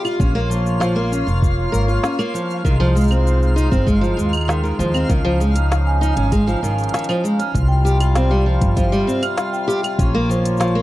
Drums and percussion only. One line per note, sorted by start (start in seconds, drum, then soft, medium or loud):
0.05 claves medium
0.05 shaker soft
0.20 kick loud
0.20 shaker soft
0.51 shaker medium
0.66 shaker soft
0.81 snare medium
0.81 shaker soft
1.13 shaker medium
1.28 shaker soft
1.42 kick loud
1.42 shaker soft
1.74 shaker medium
1.89 shaker soft
2.03 snare medium
2.03 shaker soft
2.19 claves medium
2.19 shaker soft
2.35 shaker medium
2.50 shaker soft
2.65 kick loud
2.65 shaker soft
2.97 shaker medium
3.01 shaker medium
3.04 shaker soft
3.08 claves medium
3.08 shaker soft
3.12 shaker soft
3.27 shaker soft
3.43 shaker soft
3.57 shaker medium
3.72 kick loud
3.72 shaker soft
3.87 kick loud
3.87 shaker soft
4.04 shaker soft
4.19 shaker medium
4.33 claves medium
4.33 shaker soft
4.37 claves medium
4.41 claves soft
4.45 snare loud
4.45 claves soft
4.50 shaker soft
4.65 shaker soft
4.80 shaker medium
4.94 claves medium
4.94 shaker soft
5.10 kick loud
5.10 closed hi-hat soft
5.10 shaker soft
5.41 shaker medium
5.56 closed hi-hat medium
5.56 shaker soft
5.72 snare medium
5.72 closed hi-hat soft
5.72 shaker soft
6.03 shaker medium
6.17 closed hi-hat soft
6.32 kick loud
6.32 closed hi-hat soft
6.32 shaker soft
6.49 shaker soft
6.64 shaker medium
6.78 closed hi-hat soft
6.78 shaker soft
6.84 closed hi-hat soft
6.89 closed hi-hat soft
6.94 snare loud
6.94 closed hi-hat soft
6.94 shaker soft
6.99 closed hi-hat soft
7.04 closed hi-hat soft
7.09 claves medium
7.09 shaker soft
7.25 shaker medium
7.40 closed hi-hat soft
7.40 shaker soft
7.54 kick loud
7.54 closed hi-hat soft
7.54 shaker soft
7.86 shaker medium
8.00 closed hi-hat medium
8.00 claves medium
8.00 shaker soft
8.15 snare medium
8.15 closed hi-hat soft
8.15 shaker soft
8.61 kick loud
8.61 closed hi-hat soft
8.61 shaker soft
8.77 kick loud
8.77 closed hi-hat soft
8.77 shaker soft
8.93 shaker soft
9.09 shaker medium
9.23 closed hi-hat soft
9.23 claves medium
9.23 shaker soft
9.37 snare medium
9.37 closed hi-hat soft
9.37 shaker soft
9.54 shaker soft
9.70 shaker medium
9.84 closed hi-hat medium
9.84 claves medium
9.84 shaker soft
9.99 kick loud
9.99 closed hi-hat soft
9.99 shaker soft
10.31 shaker medium
10.45 closed hi-hat medium
10.45 shaker soft
10.57 snare medium
10.57 closed hi-hat soft
10.57 shaker soft
10.61 shaker soft
10.67 shaker soft